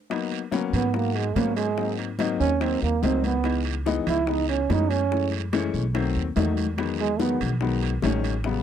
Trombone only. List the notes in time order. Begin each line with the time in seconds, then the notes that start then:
0.75 B3
0.96 A#3
1.16 G#3
1.37 A#3
1.56 G#3
2.40 C#4
2.61 C4
2.83 A#3
3.05 C4
3.25 B3
4.09 E4
4.29 D#4
4.49 C#4
4.71 D#4
4.90 C#4
7.00 G#3
7.20 B3